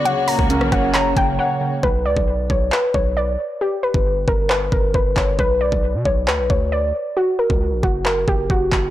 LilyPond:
<<
  \new Staff \with { instrumentName = "Soft synth lead" } { \time 4/4 \key b \minor \tempo 4 = 135 cis''4 ais'4 cis''4 r4 | r1 | r1 | r1 |
r1 | }
  \new Staff \with { instrumentName = "Synth pluck" } { \time 4/4 \key b \minor fis''8 ais''4 fis''8 ais''8 g''8 fis''4 | b'8 d''4 cis''8 b'8 cis''8 d''8 r8 | g'8 b'4 ais'8 b'8 ais'8 b'8 cis''8 | b'8 d''4 cis''8 b'8 cis''8 d''8 r8 |
fis'8 ais'4 fis'8 ais'8 g'8 fis'4 | }
  \new Staff \with { instrumentName = "Synth keys" } { \time 4/4 \key b \minor cis8 ais8 cis'8 cis''8 cis8 ais8 cis''8 cis8 | r1 | r1 | r1 |
r1 | }
  \new Staff \with { instrumentName = "String section" } { \clef bass \time 4/4 \key b \minor <cis fis ais fis'>1 | r1 | r1 | r1 |
r1 | }
  \new Staff \with { instrumentName = "808-style bass" } { \clef bass \time 4/4 \key b \minor r8. cis,8 ais,,16 fis,,4 fis,,8 r4 | b,,8 cis,16 b,,8. b,,8 r8 b,,4 r8 | r8. g,,8. g,,4 g,,8 g,,8 g,,8 | b,,8. b,,8 b,16 b,,8 d,16 b,,16 d,4 r8 |
r8. cis,8 ais,,16 fis,,4 fis,,8 fis,,8 fis,,8 | }
  \new DrumStaff \with { instrumentName = "Drums" } \drummode { \time 4/4 hh8 hho16 bd16 hh16 ss16 <hh bd ss>8 <hc hh>8 <hh bd>8 r4 | bd8. bd16 r8 bd8 hc8 bd8 r4 | r8. bd16 r8 bd8 hc8 bd8 bd8 <hc bd>8 | bd8. bd16 r8 bd8 hc8 bd8 r4 |
r8. bd16 r8 bd8 hc8 bd8 bd8 <hc bd>8 | }
>>